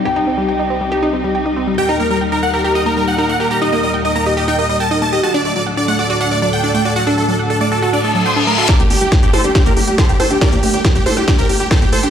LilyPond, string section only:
\new Staff \with { instrumentName = "String section" } { \clef bass \time 4/4 \key g \minor \tempo 4 = 139 << { <c, c g'>1 | <ees, bes, bes'>1~ | <ees, bes, bes'>1 | <d, a, a'>1~ |
<d, a, a'>1 | g'1~ | g'1 | } \\ { <g ees'>1~ | <g ees'>1~ | <g ees'>1 | <fis d'>1~ |
<fis d'>1 | <a bes>1~ | <a bes>1 | } >> }